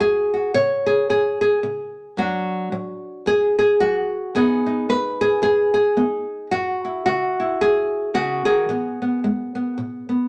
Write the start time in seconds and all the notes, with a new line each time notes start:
Already playing: F#4
0.00 F#2 G#4
0.34 F#4
0.54 C#3 C#5
0.86 G#4
1.09 F#2 G#4
1.41 G#4
1.63 C#3
2.17 F#2 F#3 D4 F#4
2.72 F#3
3.26 F#2 G#4
3.59 G#4
3.80 F#3 F#4
4.35 F#2 B3 D#4 G#4
4.66 D#4
4.89 B3 B4
5.21 G#4
5.42 F#2 G#4
5.74 G#4
5.97 B3 D#4
6.51 F#2 F#4
6.85 E4
7.06 C#3 F#4
7.40 E4
7.61 F#2 G#4
8.14 C#3 F#4
8.45 D#3 G#4
8.69 E3 B3
9.02 B3
9.24 G#3
9.55 B3
9.78 B2
10.09 B3